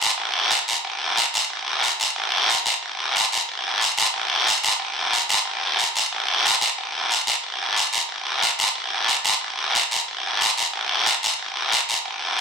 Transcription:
0.01 short guiro medium
0.18 long guiro medium
0.51 short guiro medium
0.68 short guiro medium
0.85 long guiro medium
1.17 short guiro medium
1.34 short guiro medium
1.50 long guiro medium
1.83 short guiro medium
2.00 short guiro medium
2.16 long guiro medium
2.50 short guiro medium
2.66 short guiro medium
2.82 long guiro medium
3.16 short guiro medium
3.32 short guiro medium
3.49 long guiro medium
3.81 short guiro medium
3.97 short guiro medium
4.14 long guiro medium
4.47 short guiro medium
4.63 short guiro medium
4.80 long guiro medium
5.13 short guiro medium
5.29 short guiro medium
5.45 long guiro medium
5.79 short guiro medium
5.96 short guiro medium
6.13 long guiro medium
6.46 short guiro medium
6.61 short guiro medium
6.78 long guiro medium
7.11 short guiro medium
7.27 short guiro medium
7.44 long guiro medium
7.76 short guiro medium
7.93 short guiro medium
8.09 long guiro medium
8.43 short guiro medium
8.59 short guiro medium
8.75 long guiro medium
9.08 short guiro medium
9.25 short guiro medium
9.41 long guiro medium
9.75 short guiro medium
9.91 short guiro medium
10.08 long guiro medium
10.41 short guiro medium
10.57 short guiro medium
10.73 long guiro medium
11.06 short guiro medium
11.23 short guiro medium
11.39 long guiro medium
11.72 short guiro medium
11.89 short guiro medium
12.05 long guiro medium

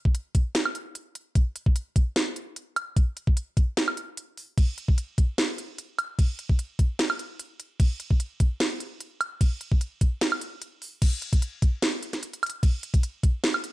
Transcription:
0.05 kick loud
0.15 closed hi-hat medium
0.35 kick loud
0.35 closed hi-hat medium
0.55 snare loud
0.55 closed hi-hat medium
0.66 high woodblock medium
0.75 closed hi-hat medium
0.95 closed hi-hat medium
1.15 closed hi-hat medium
1.35 kick loud
1.35 closed hi-hat medium
1.56 closed hi-hat medium
1.66 kick loud
1.76 closed hi-hat medium
1.96 kick loud
1.96 closed hi-hat medium
2.16 snare loud
2.16 closed hi-hat medium
2.36 closed hi-hat medium
2.56 closed hi-hat medium
2.76 closed hi-hat medium
2.76 high woodblock medium
2.96 kick loud
2.96 closed hi-hat medium
3.17 closed hi-hat medium
3.27 kick loud
3.37 closed hi-hat medium
3.57 kick loud
3.57 closed hi-hat medium
3.77 snare loud
3.77 closed hi-hat medium
3.88 high woodblock medium
3.97 closed hi-hat medium
4.17 closed hi-hat medium
4.37 open hi-hat medium
4.58 kick loud
4.58 closed hi-hat medium
4.58 crash medium
4.78 closed hi-hat medium
4.88 kick loud
4.98 closed hi-hat medium
5.18 kick loud
5.18 closed hi-hat medium
5.38 snare loud
5.38 closed hi-hat medium
5.38 crash soft
5.58 closed hi-hat medium
5.78 closed hi-hat medium
5.99 closed hi-hat medium
5.99 high woodblock medium
6.19 kick loud
6.19 closed hi-hat medium
6.19 crash soft
6.39 closed hi-hat medium
6.49 kick loud
6.59 closed hi-hat medium
6.79 kick loud
6.79 closed hi-hat medium
6.99 snare loud
6.99 closed hi-hat medium
6.99 crash soft
7.10 high woodblock medium
7.19 closed hi-hat medium
7.39 closed hi-hat medium
7.60 closed hi-hat medium
7.80 kick loud
7.80 closed hi-hat medium
7.80 crash soft
8.00 closed hi-hat medium
8.11 kick loud
8.20 closed hi-hat medium
8.40 kick loud
8.40 closed hi-hat medium
8.60 snare loud
8.60 closed hi-hat medium
8.60 crash soft
8.80 closed hi-hat medium
9.00 closed hi-hat medium
9.21 closed hi-hat medium
9.21 high woodblock medium
9.41 kick loud
9.41 closed hi-hat medium
9.41 crash soft
9.61 closed hi-hat medium
9.72 kick loud
9.81 closed hi-hat medium
10.01 kick medium
10.01 closed hi-hat medium
10.21 snare loud
10.21 closed hi-hat medium
10.21 crash soft
10.32 high woodblock medium
10.41 closed hi-hat medium
10.62 closed hi-hat medium
10.82 open hi-hat medium
11.02 kick loud
11.02 closed hi-hat medium
11.02 crash loud
11.02 crash soft
11.22 closed hi-hat medium
11.33 kick loud
11.33 closed hi-hat medium
11.42 closed hi-hat medium
11.62 kick loud
11.62 closed hi-hat medium
11.82 snare loud
11.82 closed hi-hat medium
11.82 crash soft
12.03 closed hi-hat medium
12.13 snare soft
12.13 closed hi-hat medium
12.23 closed hi-hat medium
12.33 closed hi-hat medium
12.43 closed hi-hat medium
12.43 high woodblock medium
12.46 closed hi-hat medium
12.50 closed hi-hat medium
12.63 kick loud
12.63 closed hi-hat medium
12.63 crash soft
12.83 closed hi-hat medium
12.94 kick loud
12.94 closed hi-hat medium
13.03 closed hi-hat medium
13.23 kick loud
13.23 closed hi-hat medium
13.44 snare loud
13.44 closed hi-hat medium
13.44 crash soft
13.54 high woodblock medium
13.64 closed hi-hat medium

